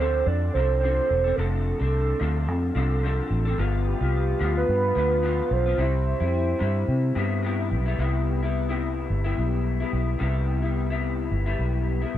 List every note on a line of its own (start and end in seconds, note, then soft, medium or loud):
0.00 0.21 D2 medium
0.00 0.55 F3 medium
0.00 0.55 C4 medium
0.00 0.57 D4 medium
0.00 0.56 A4 medium
0.00 0.28 C5 loud
0.27 0.49 F2 loud
0.27 0.55 D5 loud
0.54 0.99 C2 medium
0.54 0.81 F3 medium
0.54 0.83 C4 medium
0.54 0.79 C5 loud
0.58 0.83 D4 medium
0.58 0.84 A4 medium
0.80 1.25 F3 medium
0.80 1.26 C4 medium
0.80 1.37 C5 medium
0.85 1.26 D4 medium
0.85 1.23 A4 medium
1.11 1.32 E1 medium
1.24 1.38 C4 medium
1.24 1.38 D4 soft
1.24 1.37 A4 medium
1.36 1.72 F1 medium
1.36 1.80 F3 medium
1.36 1.81 C4 medium
1.36 1.80 D4 medium
1.36 3.30 A4 loud
1.36 1.78 A4 medium
1.79 2.13 C2 medium
1.79 2.20 C4 soft
1.79 2.20 D4 medium
1.79 2.20 A4 medium
2.19 2.48 D2 loud
2.19 2.74 F3 medium
2.19 2.75 C4 medium
2.19 2.77 D4 medium
2.19 2.77 A4 medium
2.48 2.70 F2 loud
2.75 3.20 C2 medium
2.75 3.02 F3 medium
2.75 3.03 C4 medium
2.75 3.04 D4 medium
2.75 3.04 A4 medium
3.03 3.46 F3 medium
3.03 3.47 C4 medium
3.03 3.46 D4 medium
3.03 3.44 A4 medium
3.31 3.53 A1 medium
3.45 3.59 C4 medium
3.45 3.59 D4 medium
3.45 3.58 A4 medium
3.58 3.93 G1 loud
3.58 4.01 G2 loud
3.58 4.01 D3 medium
3.58 4.01 F3 medium
3.58 4.01 B3 medium
3.58 3.99 F4 loud
3.87 4.53 G4 loud
4.01 4.33 C2 medium
4.01 4.39 F3 soft
4.01 4.40 B3 soft
4.01 4.41 F4 medium
4.39 4.63 D2 medium
4.39 4.94 D3 medium
4.39 4.96 F3 medium
4.39 4.98 B3 medium
4.39 4.97 F4 medium
4.57 5.54 B4 loud
4.69 4.91 G2 loud
4.95 5.40 D2 medium
4.95 5.21 D3 medium
4.95 5.22 F3 medium
4.95 5.24 B3 medium
4.95 5.25 F4 medium
5.22 5.66 D3 medium
5.22 5.66 F3 medium
5.22 5.66 B3 medium
5.22 5.65 F4 medium
5.51 5.73 B1 medium
5.51 7.45 C5 loud
5.66 5.78 F3 medium
5.66 5.79 B3 medium
5.66 5.79 F4 medium
5.78 6.13 C2 loud
5.78 6.21 C3 medium
5.78 6.22 G3 medium
5.78 6.19 E4 medium
6.20 6.53 F2 medium
6.20 6.59 G3 medium
6.20 6.61 E4 medium
6.59 6.83 G2 medium
6.59 7.14 C3 medium
6.59 7.16 G3 medium
6.59 7.18 E4 medium
6.88 7.11 C3 loud
7.15 7.73 G2 medium
7.15 7.42 C3 medium
7.15 7.43 G3 medium
7.15 7.44 B3 medium
7.15 7.45 E4 medium
7.43 7.86 C3 medium
7.43 7.87 G3 medium
7.43 7.87 B3 medium
7.43 7.85 E4 medium
7.71 7.94 B1 medium
7.86 7.98 G3 medium
7.86 7.99 B3 medium
7.86 7.99 E4 medium
7.99 9.06 C2 medium
7.99 8.42 C3 medium
7.99 8.42 G3 medium
7.99 8.43 B3 medium
7.99 8.41 E4 medium
8.43 8.70 G3 soft
8.43 8.69 B3 medium
8.43 8.68 E4 medium
8.69 9.26 C3 medium
8.69 9.26 G3 medium
8.69 9.25 B3 medium
8.69 9.24 E4 medium
9.10 9.32 G1 medium
9.24 9.83 G3 medium
9.24 9.81 B3 medium
9.24 9.80 E4 medium
9.38 9.82 B1 medium
9.80 10.18 G3 soft
9.80 10.19 B3 soft
9.80 10.20 E4 soft
9.93 10.15 B1 medium
10.19 11.28 C2 medium
10.19 10.63 C3 medium
10.19 10.63 G3 medium
10.19 10.63 B3 medium
10.19 10.61 E4 medium
10.62 10.91 G3 medium
10.62 10.90 B3 medium
10.62 10.89 E4 medium
10.90 11.48 C3 soft
10.90 11.47 G3 medium
10.90 11.47 B3 medium
10.90 11.46 E4 medium
11.31 11.54 G1 medium
11.46 12.05 G3 medium
11.46 12.03 B3 medium
11.46 12.01 E4 medium
11.59 12.04 B1 medium
12.02 12.18 G3 soft
12.02 12.18 B3 soft
12.02 12.18 E4 soft
12.15 12.18 B1 medium